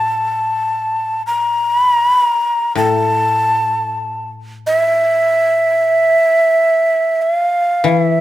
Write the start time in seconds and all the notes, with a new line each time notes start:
Already playing: A2 A5
1.27 A#5
1.79 B5
1.93 A#5
2.08 B5
2.22 A#5
2.75 A2 A5
4.67 E5
7.22 E5
7.34 F5
7.84 E3
7.88 F5
8.00 E5